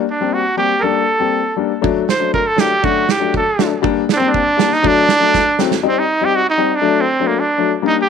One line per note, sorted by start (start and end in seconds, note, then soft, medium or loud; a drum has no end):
0.10 0.35 D4 medium
0.21 0.40 G3 medium
0.21 0.40 A#3 soft
0.21 0.40 C4 medium
0.33 0.57 F#4 medium
0.57 0.71 G3 medium
0.57 0.71 A#3 medium
0.57 0.71 C4 medium
0.57 0.81 G4 medium
0.79 1.02 G3 medium
0.79 1.59 A4 medium
0.79 0.84 A#4 medium
0.84 1.03 A#3 medium
0.84 1.03 D4 medium
1.19 1.40 G3 medium
1.19 1.40 A#3 soft
1.19 1.40 C4 medium
1.56 1.71 G3 medium
1.56 1.71 A#3 medium
1.56 1.71 D4 medium
1.82 2.02 F#3 medium
1.82 2.02 A3 medium
1.82 2.02 D4 medium
1.82 kick medium
2.09 2.33 C5 medium
2.09 snare medium
2.19 2.40 F#3 medium
2.19 2.40 A3 medium
2.19 2.40 D4 medium
2.34 2.49 A#4 medium
2.34 kick medium
2.47 2.61 A4 medium
2.56 2.71 F#3 medium
2.56 2.71 A3 medium
2.56 2.71 D4 medium
2.56 2.86 G4 medium
2.56 snare medium
2.83 3.02 F#3 medium
2.83 3.03 A3 medium
2.83 3.03 D4 medium
2.83 3.12 F#4 medium
2.83 kick medium
3.09 3.35 G4 medium
3.09 snare medium
3.20 3.40 F#3 medium
3.20 3.40 A3 medium
3.20 3.40 D4 medium
3.34 3.71 A4 medium
3.34 kick medium
3.58 3.71 F#3 medium
3.58 3.72 A3 medium
3.58 3.72 D4 medium
3.58 snare medium
3.82 4.02 G3 medium
3.82 4.02 A#3 medium
3.82 4.02 D4 loud
3.82 kick medium
4.09 4.18 D4 medium
4.09 snare medium
4.16 4.39 G3 medium
4.16 4.39 A#3 medium
4.16 4.29 C4 medium
4.20 4.40 C4 medium
4.27 4.75 D4 medium
4.34 kick medium
4.57 4.71 G3 medium
4.57 4.71 A#3 medium
4.57 4.71 D4 medium
4.57 snare medium
4.72 4.89 D#4 loud
4.72 snare soft
4.83 5.02 F#3 medium
4.83 5.02 A3 medium
4.83 5.02 D4 medium
4.83 kick medium
4.87 5.60 D4 loud
5.09 snare medium
5.20 5.39 F#3 medium
5.20 5.39 A3 medium
5.20 5.40 D4 medium
5.34 kick medium
5.34 snare soft
5.59 5.71 F#3 medium
5.59 5.71 A3 medium
5.59 5.72 C4 medium
5.59 snare medium
5.71 snare medium
5.83 6.02 G3 medium
5.83 6.02 C4 medium
5.83 6.02 D#4 medium
5.88 6.00 C4 medium
5.99 6.26 D#4 medium
6.21 6.40 G3 medium
6.21 6.40 C4 medium
6.21 6.40 D#4 medium
6.21 6.37 G4 medium
6.36 6.47 F#4 medium
6.50 6.77 D#4 medium
6.58 6.70 G3 medium
6.58 6.71 C4 medium
6.58 6.71 D#4 medium
6.75 7.02 D4 medium
6.82 7.01 F#3 medium
6.82 7.01 A3 medium
6.82 7.01 D4 medium
7.01 7.29 C4 medium
7.20 7.39 F#3 medium
7.20 7.39 A3 medium
7.20 7.39 D4 medium
7.27 7.41 A#3 medium
7.40 7.73 D4 medium
7.58 7.70 F#3 medium
7.58 7.70 A3 medium
7.58 7.70 D4 medium
7.82 8.01 G3 medium
7.82 8.01 A#3 medium
7.82 8.01 D4 medium
7.87 7.96 D#4 loud
8.02 8.09 G4 loud